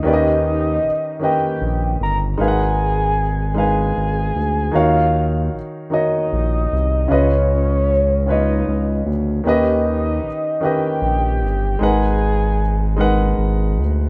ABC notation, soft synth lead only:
X:1
M:6/8
L:1/8
Q:3/8=51
K:Abdor
V:1 name="Soft synth lead"
e3 =g2 b | a3 a3 | f2 z e3 | d3 e2 z |
e3 =g3 | a4 z2 |]